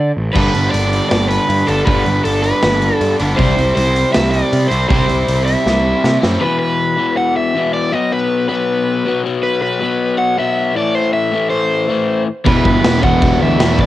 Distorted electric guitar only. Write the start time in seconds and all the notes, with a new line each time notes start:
0.35 G2 D3 G3 B3 D4
1.67 D3 G3 B3 D4
1.71 G2
1.86 G2 D3 G3 B3 D4
3.20 G2 D3 G3 B3 D4
3.38 C3 G3 C4 E4
4.70 C3 G3 C4 E4
4.88 C3 G3 C4
4.92 E4
6.21 C3 G3 C4 E4
12.45 E3 G3 B3 E4